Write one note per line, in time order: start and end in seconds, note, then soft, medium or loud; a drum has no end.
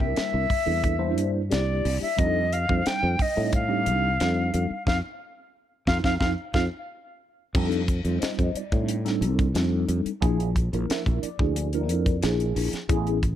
0.00 0.15 C2 medium
0.00 0.53 G3 medium
0.00 0.53 A#3 medium
0.00 0.53 D4 medium
0.00 0.54 E4 medium
0.00 0.53 A#4 medium
0.00 1.30 E5 medium
0.00 kick medium
0.16 snare medium
0.16 closed hi-hat medium
0.34 0.49 C2 medium
0.50 kick medium
0.50 open hi-hat medium
0.66 1.18 E2 medium
0.66 0.94 G3 medium
0.66 0.94 A#3 medium
0.66 0.94 D4 medium
0.66 0.94 E4 medium
0.66 0.94 A4 medium
0.84 kick medium
0.84 closed hi-hat medium
0.98 1.41 G3 loud
0.98 1.41 A#3 medium
0.98 1.41 D4 medium
0.98 1.41 E4 medium
0.98 1.41 C5 loud
1.18 1.48 G2 medium
1.18 closed hi-hat medium
1.50 1.82 C2 medium
1.50 2.05 G3 medium
1.50 2.06 A#3 medium
1.50 2.05 D4 medium
1.50 2.06 E4 medium
1.50 2.05 G4 medium
1.50 1.98 D5 medium
1.50 snare loud
1.50 closed hi-hat medium
1.85 2.00 C2 medium
1.85 open hi-hat medium
2.02 2.20 E5 medium
2.02 muted fretless electric bass stroke soft
2.16 2.65 F2 loud
2.16 2.45 G3 medium
2.16 2.45 C4 medium
2.16 2.45 D4 medium
2.16 2.45 D#4 medium
2.16 2.45 A4 medium
2.16 2.55 D#5 medium
2.16 kick loud
2.16 closed hi-hat medium
2.52 2.60 D#4 soft
2.52 2.60 G4 soft
2.52 2.88 F5 medium
2.52 closed hi-hat medium
2.69 2.84 F2 medium
2.69 3.23 G3 medium
2.69 3.23 C4 medium
2.69 3.24 D4 medium
2.69 3.24 D#4 medium
2.69 3.24 C5 medium
2.69 kick medium
2.86 3.23 G5 medium
2.86 muted fretless electric bass stroke soft
2.86 snare medium
2.86 closed hi-hat medium
3.03 3.18 F2 medium
3.19 3.54 D#5 medium
3.19 kick medium
3.19 open hi-hat medium
3.35 3.88 A2 medium
3.35 3.63 G3 medium
3.35 3.63 C4 medium
3.35 3.63 D4 medium
3.35 3.63 D#4 medium
3.35 3.63 A4 medium
3.53 4.84 F5 medium
3.53 kick medium
3.53 closed hi-hat medium
3.68 4.10 G3 medium
3.68 4.10 C4 medium
3.68 4.10 D4 medium
3.68 4.10 D#4 medium
3.68 4.10 G4 medium
3.86 4.17 C2 medium
3.86 closed hi-hat medium
4.20 4.51 F2 medium
4.20 4.75 G3 medium
4.20 4.74 C4 medium
4.20 4.75 D4 medium
4.20 4.75 D#4 medium
4.20 4.75 A4 medium
4.20 snare loud
4.20 closed hi-hat medium
4.54 4.69 F2 medium
4.54 closed hi-hat medium
4.70 muted fretless electric bass stroke soft
4.87 4.99 F2 medium
4.87 4.98 C4 medium
4.87 4.97 D#4 medium
4.87 4.98 F4 medium
4.87 4.98 F5 medium
4.87 kick medium
4.87 snare medium
5.87 6.00 F2 medium
5.87 5.98 C4 medium
5.87 5.98 D#4 medium
5.87 5.98 F4 medium
5.87 5.98 F5 medium
5.87 kick medium
5.87 snare medium
6.04 6.16 F2 medium
6.04 6.15 C4 medium
6.04 6.15 D#4 medium
6.04 6.16 F4 medium
6.04 6.15 F5 medium
6.04 kick medium
6.04 snare medium
6.20 6.33 F2 medium
6.20 6.31 C4 medium
6.20 6.31 D#4 medium
6.20 6.32 F4 medium
6.20 6.31 F5 medium
6.20 kick medium
6.20 snare medium
6.53 6.67 F2 medium
6.53 6.66 C4 medium
6.53 6.66 D#4 medium
6.53 6.66 F4 medium
6.53 6.65 F5 medium
6.53 kick medium
6.53 snare medium
7.55 8.01 F2 medium
7.55 7.82 G3 loud
7.55 7.82 C4 medium
7.55 7.83 D4 medium
7.55 7.83 D#4 medium
7.55 7.83 A4 loud
7.55 kick loud
7.55 crash medium
7.72 closed hi-hat soft
7.88 7.97 D#4 soft
7.88 7.98 C5 soft
7.88 kick medium
7.88 closed hi-hat soft
8.04 8.20 F2 medium
8.04 8.60 G3 medium
8.04 8.60 C4 medium
8.04 8.61 D#4 medium
8.04 8.61 F4 medium
8.04 8.61 C5 medium
8.04 closed hi-hat soft
8.21 8.54 D#5 medium
8.21 muted fretless electric bass stroke soft
8.21 snare medium
8.21 closed hi-hat medium
8.39 8.54 F2 medium
8.39 kick medium
8.39 closed hi-hat soft
8.55 9.52 D5 medium
8.55 muted fretless electric bass stroke soft
8.55 closed hi-hat medium
8.72 9.23 A2 medium
8.72 9.00 G3 medium
8.72 9.00 C4 medium
8.72 9.00 D4 medium
8.72 9.00 D#4 medium
8.72 9.00 A4 medium
8.72 kick medium
8.72 closed hi-hat soft
8.88 closed hi-hat medium
9.05 9.46 G3 medium
9.05 9.46 C4 medium
9.05 9.46 D4 medium
9.05 9.46 D#4 medium
9.05 9.46 A4 medium
9.05 snare soft
9.05 closed hi-hat soft
9.21 9.52 C2 medium
9.21 closed hi-hat medium
9.39 kick medium
9.39 closed hi-hat soft
9.54 9.86 F2 medium
9.54 10.10 G3 medium
9.54 10.10 C4 medium
9.54 10.10 D4 medium
9.54 10.10 D#4 medium
9.54 10.11 A4 medium
9.54 snare loud
9.54 closed hi-hat medium
9.88 10.04 F2 medium
9.88 closed hi-hat medium
10.05 muted fretless electric bass stroke soft
10.05 closed hi-hat soft
10.21 10.69 A#1 medium
10.21 10.49 F3 loud
10.21 10.50 A#3 medium
10.21 10.49 D4 medium
10.21 10.49 E4 medium
10.21 10.49 G#4 loud
10.21 kick loud
10.21 closed hi-hat medium
10.40 closed hi-hat soft
10.56 kick medium
10.56 closed hi-hat medium
10.73 10.88 A#1 medium
10.73 11.27 F3 medium
10.73 11.27 A#3 medium
10.73 11.28 D4 medium
10.73 11.27 E4 medium
10.73 11.28 A#4 medium
10.73 closed hi-hat soft
10.90 11.22 E5 medium
10.90 muted fretless electric bass stroke soft
10.90 snare loud
10.90 closed hi-hat medium
11.06 11.22 A#1 medium
11.06 kick medium
11.06 closed hi-hat soft
11.23 12.19 D5 medium
11.23 closed hi-hat medium
11.39 11.90 D2 medium
11.39 11.67 F3 medium
11.39 11.67 A#3 medium
11.39 11.67 D4 medium
11.39 11.67 E4 medium
11.39 11.67 G#4 medium
11.39 kick medium
11.56 closed hi-hat medium
11.73 12.14 F3 medium
11.73 12.14 A#3 medium
11.73 12.14 D4 medium
11.73 12.15 E4 medium
11.73 12.15 A#4 medium
11.73 closed hi-hat soft
11.89 12.21 F2 medium
11.89 closed hi-hat medium
12.06 kick medium
12.06 closed hi-hat soft
12.22 12.54 A#1 medium
12.22 12.78 F3 medium
12.22 12.77 A#3 medium
12.22 12.77 D4 medium
12.22 12.77 E4 medium
12.22 12.78 G#4 medium
12.22 snare loud
12.22 closed hi-hat medium
12.40 closed hi-hat soft
12.56 12.72 A#1 medium
12.56 open hi-hat medium
12.73 muted fretless electric bass stroke soft
12.73 snare soft
12.73 closed hi-hat soft
12.89 13.36 A1 loud
12.89 13.17 A3 loud
12.89 13.17 B3 loud
12.89 13.17 C#4 loud
12.89 13.17 E4 medium
12.89 13.17 G#4 loud
12.89 kick loud
12.89 closed hi-hat medium
13.07 closed hi-hat soft
13.23 kick medium
13.23 closed hi-hat medium